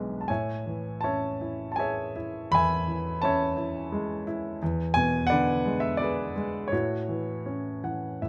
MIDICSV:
0, 0, Header, 1, 2, 480
1, 0, Start_track
1, 0, Key_signature, 3, "major"
1, 0, Tempo, 739827
1, 191, Time_signature, 3, 2, 24, 8
1, 1628, Tempo, 702576
1, 4508, Tempo, 758534
1, 5497, End_track
2, 0, Start_track
2, 0, Title_t, "Grand piano"
2, 0, Program_c, 0, 0
2, 0, Control_c, 0, 64, 127
2, 0, Note_on_c, 0, 35, 58
2, 0, Note_on_c, 0, 47, 45
2, 0, Note_on_c, 0, 50, 48
2, 0, Note_on_c, 0, 56, 42
2, 0, Note_on_c, 0, 59, 38
2, 0, Note_on_c, 0, 68, 43
2, 0, Note_on_c, 0, 71, 42
2, 0, Note_on_c, 0, 74, 69
2, 0, Note_on_c, 0, 76, 57
2, 135, Note_on_c, 0, 81, 41
2, 162, Note_off_c, 0, 35, 0
2, 167, Note_off_c, 0, 50, 0
2, 174, Note_off_c, 0, 59, 0
2, 181, Note_on_c, 0, 80, 64
2, 185, Note_off_c, 0, 56, 0
2, 185, Note_off_c, 0, 81, 0
2, 194, Note_on_c, 0, 45, 50
2, 195, Note_on_c, 0, 73, 45
2, 199, Note_off_c, 0, 74, 0
2, 199, Control_c, 0, 64, 0
2, 200, Note_off_c, 0, 47, 0
2, 200, Note_off_c, 0, 68, 0
2, 200, Note_off_c, 0, 71, 0
2, 201, Note_off_c, 0, 76, 0
2, 201, Note_on_c, 0, 76, 46
2, 306, Control_c, 0, 64, 127
2, 430, Note_on_c, 0, 52, 45
2, 653, Note_on_c, 0, 81, 66
2, 665, Note_off_c, 0, 73, 0
2, 667, Note_off_c, 0, 76, 0
2, 674, Note_on_c, 0, 73, 51
2, 675, Note_on_c, 0, 61, 47
2, 677, Note_on_c, 0, 76, 46
2, 687, Note_off_c, 0, 80, 0
2, 915, Note_on_c, 0, 64, 43
2, 1104, Note_off_c, 0, 81, 0
2, 1114, Note_on_c, 0, 81, 52
2, 1141, Note_on_c, 0, 80, 69
2, 1155, Note_off_c, 0, 76, 0
2, 1158, Note_off_c, 0, 73, 0
2, 1159, Note_off_c, 0, 81, 0
2, 1159, Note_on_c, 0, 68, 50
2, 1165, Note_on_c, 0, 76, 51
2, 1167, Note_on_c, 0, 73, 52
2, 1367, Note_off_c, 0, 52, 0
2, 1390, Note_off_c, 0, 64, 0
2, 1400, Note_on_c, 0, 64, 51
2, 1601, Note_off_c, 0, 61, 0
2, 1604, Note_off_c, 0, 45, 0
2, 1629, Note_on_c, 0, 40, 64
2, 1633, Note_on_c, 0, 83, 97
2, 1634, Note_off_c, 0, 80, 0
2, 1644, Note_off_c, 0, 76, 0
2, 1653, Note_on_c, 0, 80, 69
2, 1654, Note_on_c, 0, 76, 63
2, 1849, Note_off_c, 0, 73, 0
2, 1877, Note_on_c, 0, 52, 49
2, 2087, Note_off_c, 0, 68, 0
2, 2111, Note_on_c, 0, 81, 80
2, 2119, Note_on_c, 0, 61, 54
2, 2121, Note_off_c, 0, 76, 0
2, 2131, Note_off_c, 0, 83, 0
2, 2131, Note_on_c, 0, 76, 53
2, 2133, Note_on_c, 0, 73, 59
2, 2330, Note_off_c, 0, 64, 0
2, 2339, Note_off_c, 0, 80, 0
2, 2350, Note_on_c, 0, 64, 50
2, 2593, Note_on_c, 0, 56, 57
2, 2803, Note_off_c, 0, 81, 0
2, 2808, Note_off_c, 0, 52, 0
2, 2814, Note_off_c, 0, 76, 0
2, 2815, Note_off_c, 0, 73, 0
2, 2822, Note_off_c, 0, 64, 0
2, 2832, Note_on_c, 0, 64, 59
2, 3041, Note_off_c, 0, 40, 0
2, 3043, Note_off_c, 0, 61, 0
2, 3053, Note_off_c, 0, 56, 0
2, 3060, Note_off_c, 0, 64, 0
2, 3072, Note_on_c, 0, 40, 69
2, 3076, Control_c, 0, 64, 0
2, 3180, Control_c, 0, 64, 127
2, 3288, Note_on_c, 0, 80, 102
2, 3304, Note_on_c, 0, 47, 55
2, 3511, Note_on_c, 0, 78, 94
2, 3533, Note_on_c, 0, 74, 66
2, 3534, Note_on_c, 0, 71, 70
2, 3539, Note_off_c, 0, 80, 0
2, 3544, Note_on_c, 0, 50, 57
2, 3775, Note_on_c, 0, 56, 53
2, 3878, Note_on_c, 0, 76, 73
2, 3894, Note_off_c, 0, 78, 0
2, 3984, Note_off_c, 0, 74, 0
2, 3995, Note_on_c, 0, 74, 74
2, 4011, Note_off_c, 0, 76, 0
2, 4011, Note_on_c, 0, 59, 51
2, 4017, Note_off_c, 0, 71, 0
2, 4024, Note_on_c, 0, 68, 55
2, 4028, Note_on_c, 0, 71, 60
2, 4233, Note_off_c, 0, 47, 0
2, 4247, Note_off_c, 0, 56, 0
2, 4257, Note_on_c, 0, 56, 55
2, 4475, Note_on_c, 0, 73, 67
2, 4482, Note_off_c, 0, 40, 0
2, 4483, Note_off_c, 0, 50, 0
2, 4483, Note_off_c, 0, 68, 0
2, 4485, Note_off_c, 0, 71, 0
2, 4489, Note_off_c, 0, 59, 0
2, 4499, Note_off_c, 0, 56, 0
2, 4504, Note_on_c, 0, 45, 58
2, 4508, Note_on_c, 0, 64, 45
2, 4508, Note_on_c, 0, 66, 50
2, 4511, Note_off_c, 0, 74, 0
2, 4515, Control_c, 0, 64, 0
2, 4638, Control_c, 0, 64, 127
2, 4735, Note_on_c, 0, 52, 45
2, 4974, Note_on_c, 0, 61, 42
2, 5202, Note_off_c, 0, 52, 0
2, 5211, Note_on_c, 0, 52, 38
2, 5213, Note_on_c, 0, 78, 49
2, 5425, Note_off_c, 0, 73, 0
2, 5440, Note_off_c, 0, 64, 0
2, 5440, Note_off_c, 0, 66, 0
2, 5445, Note_off_c, 0, 45, 0
2, 5448, Note_off_c, 0, 78, 0
2, 5454, Note_on_c, 0, 45, 44
2, 5455, Note_on_c, 0, 76, 51
2, 5497, Note_off_c, 0, 45, 0
2, 5497, Note_off_c, 0, 52, 0
2, 5497, Note_off_c, 0, 61, 0
2, 5497, Note_off_c, 0, 76, 0
2, 5497, End_track
0, 0, End_of_file